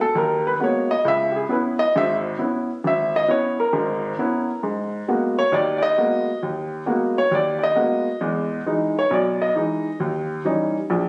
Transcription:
0.01 0.15 A4 medium
0.15 0.54 D#2 medium
0.15 0.45 A#4 medium
0.47 0.61 B4 medium
0.59 0.91 G#3 soft
0.59 0.91 A#3 soft
0.59 0.91 B3 soft
0.59 0.91 F#4 medium
0.64 0.90 C#5 medium
0.91 1.05 D#5 medium
1.05 1.43 C#2 medium
1.05 1.44 C#3 medium
1.05 1.35 E5 medium
1.32 1.34 G4 soft
1.36 1.50 G#4 medium
1.49 1.80 B3 medium
1.49 1.80 C#4 soft
1.49 1.81 E4 medium
1.49 1.80 B4 medium
1.79 1.94 D#5 loud
1.96 2.34 G#1 medium
1.96 2.34 G#2 medium
1.96 2.14 E5 medium
2.39 2.70 B3 soft
2.39 2.70 C#4 soft
2.39 2.70 E4 medium
2.84 3.23 G#1 medium
2.84 3.14 E5 medium
3.16 3.30 D#5 medium
3.28 3.59 B3 medium
3.28 3.60 C#4 soft
3.28 3.60 E4 medium
3.28 3.58 C#5 medium
3.60 4.60 A#4 medium
3.73 4.12 G#1 medium
3.73 4.12 G#2 medium
4.19 4.50 B3 medium
4.19 4.50 C#4 soft
4.19 4.50 E4 medium
4.63 5.02 G#2 medium
5.08 5.39 G#3 medium
5.08 5.39 A#3 soft
5.08 5.39 B3 soft
5.08 5.39 F#4 medium
5.39 5.53 C#5 medium
5.52 5.91 D#2 medium
5.52 5.91 D#3 medium
5.52 5.77 D5 medium
5.78 5.80 D5 medium
5.83 6.38 D#5 loud
5.98 6.29 G#3 soft
5.98 6.29 A#3 soft
5.98 6.29 B3 soft
5.98 6.29 F#4 medium
6.43 6.81 D#2 medium
6.86 7.18 G#3 soft
6.86 7.18 A#3 soft
6.86 7.18 B3 soft
6.86 7.18 F#4 medium
7.18 7.32 C#5 medium
7.31 7.70 D#2 medium
7.31 7.57 D5 medium
7.59 7.61 D5 medium
7.63 8.19 D#5 medium
7.75 8.07 G#3 medium
7.75 8.07 A#3 soft
7.75 8.07 B3 soft
7.75 8.08 F#4 medium
8.21 8.60 E2 medium
8.21 8.60 G#3 medium
8.66 8.97 E3 medium
8.66 8.97 G#3 soft
8.66 8.98 D#4 medium
8.99 9.12 C#5 medium
9.11 9.50 B1 medium
9.11 9.41 D5 medium
9.42 9.97 D#5 medium
9.56 9.87 E3 medium
9.56 9.87 G#3 soft
9.56 9.87 D#4 medium
10.00 10.39 D#2 medium
10.45 10.76 E3 medium
10.45 10.76 G3 soft
10.45 10.77 C#4 soft
10.45 10.77 D#4 medium
10.90 11.09 A#1 medium

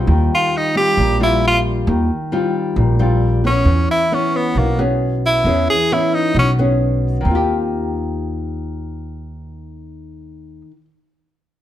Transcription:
0.00 0.72 G3 medium
0.00 0.72 C4 soft
0.00 0.72 F4 soft
0.07 0.28 D#2 medium
0.07 0.95 D#3 soft
0.35 0.58 F4 medium
0.57 0.77 D#4 medium
0.75 1.16 G3 soft
0.75 1.17 C4 soft
0.75 1.17 F4 medium
0.75 1.18 G4 medium
0.97 1.83 A#1 medium
0.97 1.85 A#2 medium
1.20 2.06 G3 medium
1.20 2.06 C4 medium
1.20 1.42 E4 medium
1.20 2.06 F4 medium
1.47 1.59 F4 medium
1.87 2.08 D#2 medium
1.87 2.75 D#3 medium
2.32 2.96 G3 medium
2.32 2.96 C4 soft
2.32 2.96 F4 medium
2.76 3.62 A#1 medium
2.76 3.65 A#2 medium
2.99 3.41 G3 medium
2.99 3.40 C4 medium
2.99 3.41 F4 medium
3.44 4.11 B3 soft
3.44 4.11 C#4 soft
3.44 3.87 C#4 medium
3.44 4.11 G#4 medium
3.65 3.87 E2 medium
3.65 4.54 E3 medium
3.91 4.15 E4 medium
4.12 4.75 B3 soft
4.12 4.75 C#4 soft
4.12 4.37 C#4 medium
4.12 4.75 G#4 medium
4.36 4.60 B3 medium
4.55 5.41 B1 medium
4.55 5.44 B2 soft
4.55 4.80 A#3 medium
4.78 5.42 B3 medium
4.78 5.42 C#4 medium
4.78 5.42 G#4 medium
5.26 5.67 E4 medium
5.44 5.66 E2 medium
5.44 6.33 E3 soft
5.44 5.75 B3 soft
5.44 5.75 C#4 soft
5.44 5.75 G#4 medium
5.70 5.95 G#4 medium
5.92 6.36 B3 soft
5.92 6.36 C#4 soft
5.92 6.16 E4 medium
5.92 6.36 G#4 medium
6.14 6.36 D#4 medium
6.35 7.21 B1 medium
6.35 7.20 B2 soft
6.39 6.51 C#4 medium
6.59 7.22 B3 soft
6.59 7.22 C#4 medium
6.59 7.22 G#4 soft
7.21 10.71 D#3 medium
7.25 10.61 D#2 medium
7.25 10.76 C4 medium
7.31 10.81 F4 medium
7.35 10.85 G4 medium

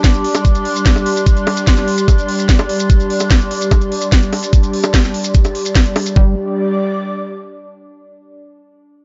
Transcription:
0.00 6.15 G3 medium
0.00 6.17 D4 medium
0.00 6.16 G4 medium
0.00 6.16 D5 medium
0.00 6.16 C6 medium
0.00 kick loud
0.04 snare loud
0.04 closed hi-hat medium
0.04 maracas medium
0.14 closed hi-hat soft
0.14 maracas soft
0.24 open hi-hat loud
0.35 closed hi-hat soft
0.35 high bongo medium
0.35 maracas medium
0.45 kick loud
0.45 closed hi-hat medium
0.45 maracas medium
0.55 closed hi-hat soft
0.55 maracas soft
0.65 open hi-hat loud
0.75 closed hi-hat medium
0.75 maracas medium
0.86 kick loud
0.86 snare loud
0.86 closed hi-hat medium
0.86 maracas medium
0.96 closed hi-hat soft
0.96 high bongo soft
0.96 maracas soft
1.06 open hi-hat loud
1.16 closed hi-hat soft
1.16 maracas medium
1.26 kick loud
1.26 closed hi-hat medium
1.26 maracas medium
1.37 closed hi-hat soft
1.37 maracas soft
1.47 open hi-hat loud
1.47 high bongo medium
1.57 closed hi-hat medium
1.57 maracas medium
1.67 kick loud
1.67 snare loud
1.67 closed hi-hat medium
1.67 maracas medium
1.76 snare soft
1.76 closed hi-hat soft
1.76 maracas soft
1.88 open hi-hat loud
1.98 closed hi-hat medium
1.98 maracas medium
2.08 kick loud
2.08 closed hi-hat medium
2.08 high bongo soft
2.08 maracas medium
2.18 closed hi-hat soft
2.18 maracas soft
2.28 open hi-hat loud
2.39 closed hi-hat soft
2.39 maracas medium
2.49 kick loud
2.49 snare loud
2.49 closed hi-hat medium
2.49 maracas medium
2.59 closed hi-hat soft
2.59 high bongo medium
2.59 maracas soft
2.69 open hi-hat loud
2.79 closed hi-hat medium
2.79 maracas medium
2.90 kick loud
2.90 closed hi-hat medium
2.90 maracas medium
3.00 closed hi-hat soft
3.00 maracas soft
3.10 open hi-hat loud
3.20 closed hi-hat medium
3.20 high bongo soft
3.20 maracas medium
3.31 kick loud
3.31 snare loud
3.31 closed hi-hat medium
3.31 maracas medium
3.41 closed hi-hat soft
3.41 maracas soft
3.51 open hi-hat loud
3.61 closed hi-hat medium
3.61 maracas medium
3.71 kick loud
3.71 closed hi-hat medium
3.71 high bongo medium
3.71 maracas medium
3.81 closed hi-hat soft
3.81 maracas soft
3.92 open hi-hat loud
4.01 closed hi-hat medium
4.01 maracas medium
4.12 kick loud
4.12 snare loud
4.12 closed hi-hat medium
4.12 maracas medium
4.22 closed hi-hat soft
4.22 maracas soft
4.33 open hi-hat loud
4.33 high bongo soft
4.43 closed hi-hat medium
4.43 maracas medium
4.53 kick loud
4.53 closed hi-hat medium
4.53 maracas medium
4.63 closed hi-hat soft
4.63 maracas soft
4.73 open hi-hat loud
4.83 closed hi-hat medium
4.83 high bongo medium
4.83 maracas medium
4.94 kick loud
4.94 snare loud
4.94 closed hi-hat medium
4.94 maracas medium
5.04 snare soft
5.04 closed hi-hat soft
5.04 maracas soft
5.14 open hi-hat loud
5.24 closed hi-hat medium
5.24 maracas medium
5.34 kick loud
5.34 closed hi-hat medium
5.34 maracas medium
5.45 closed hi-hat soft
5.45 high bongo soft
5.45 maracas soft
5.55 open hi-hat loud
5.65 closed hi-hat medium
5.65 maracas medium
5.75 kick loud
5.75 snare loud
5.75 closed hi-hat medium
5.75 maracas medium
5.86 closed hi-hat soft
5.86 maracas soft
5.96 open hi-hat loud
5.96 high bongo medium
6.06 closed hi-hat medium
6.06 maracas medium
6.16 6.35 G1 loud
6.16 6.35 G3 medium
6.16 7.76 G3 medium
6.16 kick loud
6.22 7.76 G4 medium
6.29 7.76 D5 medium
6.35 7.76 D6 medium

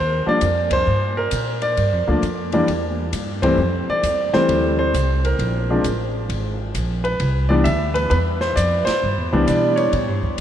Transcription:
0.00 0.24 D#2 medium
0.00 0.25 C5 medium
0.26 0.40 F3 medium
0.26 0.40 G3 medium
0.26 0.41 A#3 medium
0.26 0.41 D4 medium
0.26 0.70 D5 medium
0.26 muted upright bass stroke soft
0.41 0.86 F2 medium
0.41 kick soft
0.41 hi-hat pedal medium
0.41 ride medium
0.71 1.19 C5 loud
0.71 kick medium
0.71 ride medium
0.87 1.31 G2 medium
1.17 1.64 A#4 medium
1.31 1.76 A#2 medium
1.31 kick soft
1.31 hi-hat pedal medium
1.31 ride medium
1.62 2.49 D5 medium
1.62 ride soft
1.77 1.92 G2 medium
1.77 kick soft
1.77 ride soft
1.92 2.07 F2 medium
2.07 2.22 D2 medium
2.07 2.21 F3 medium
2.07 2.21 A3 medium
2.07 2.21 A#3 medium
2.07 2.22 D4 medium
2.22 2.66 F2 medium
2.22 kick soft
2.22 hi-hat pedal soft
2.22 ride medium
2.52 2.67 E3 medium
2.52 2.67 G3 medium
2.52 2.67 A#3 medium
2.52 2.67 D4 medium
2.52 ride soft
2.67 3.12 E2 medium
2.67 kick soft
2.67 ride medium
3.12 3.57 G2 medium
3.12 kick soft
3.12 hi-hat pedal medium
3.12 ride medium
3.42 3.57 E3 medium
3.42 3.57 G3 medium
3.42 3.57 A3 medium
3.42 3.57 C4 medium
3.42 3.85 C5 medium
3.42 kick medium
3.42 ride medium
3.58 3.86 F2 medium
3.88 4.31 D5 medium
3.88 muted upright bass stroke soft
4.03 4.31 E2 medium
4.03 kick soft
4.03 hi-hat pedal medium
4.03 ride medium
4.33 4.91 E3 medium
4.33 4.91 G3 medium
4.33 4.91 A3 medium
4.33 4.91 C4 medium
4.33 4.76 C5 medium
4.33 muted upright bass stroke soft
4.33 snare soft
4.48 4.93 D2 medium
4.48 kick soft
4.48 ride medium
4.79 5.26 C5 medium
4.94 5.38 C2 medium
4.94 kick soft
4.94 hi-hat pedal medium
4.94 ride medium
5.25 6.11 A#4 medium
5.25 ride soft
5.39 5.83 A#1 medium
5.39 kick soft
5.39 ride medium
5.70 5.84 F3 medium
5.70 5.84 G#3 medium
5.70 5.84 C4 medium
5.70 5.84 D4 medium
5.84 6.29 A1 medium
5.84 kick soft
5.84 hi-hat pedal soft
5.84 ride medium
6.29 6.74 G#1 medium
6.29 kick soft
6.29 ride medium
6.74 7.19 A#1 medium
6.74 kick soft
6.74 hi-hat pedal medium
6.74 ride medium
7.04 7.47 B4 medium
7.04 ride soft
7.20 7.64 C2 medium
7.20 kick soft
7.20 ride medium
7.49 7.64 E3 medium
7.49 7.64 G3 medium
7.49 7.65 B3 medium
7.49 7.65 D4 medium
7.49 7.54 D5 medium
7.64 8.10 D2 medium
7.64 7.96 E5 medium
7.64 hi-hat pedal medium
7.64 ride medium
7.94 8.09 B4 medium
7.94 ride soft
8.10 8.55 E2 medium
8.10 8.17 B4 medium
8.10 ride medium
8.41 8.57 C5 medium
8.41 snare soft
8.56 8.85 F2 medium
8.56 8.87 D5 medium
8.56 kick soft
8.56 hi-hat pedal medium
8.56 ride medium
8.85 9.43 C5 medium
8.85 muted upright bass stroke soft
8.85 snare medium
8.85 ride medium
9.03 9.18 G2 medium
9.18 9.33 E2 medium
9.33 9.47 C2 medium
9.33 9.90 E3 medium
9.33 9.90 G3 medium
9.33 9.91 B3 medium
9.33 9.91 D4 medium
9.47 9.92 B2 medium
9.47 9.75 D5 medium
9.47 kick soft
9.47 hi-hat pedal medium
9.47 ride medium
9.76 10.40 C#5 medium
9.76 ride soft
9.93 10.08 A2 medium
9.93 ride medium
10.08 10.22 G2 medium
10.23 10.37 E2 medium
10.23 kick soft

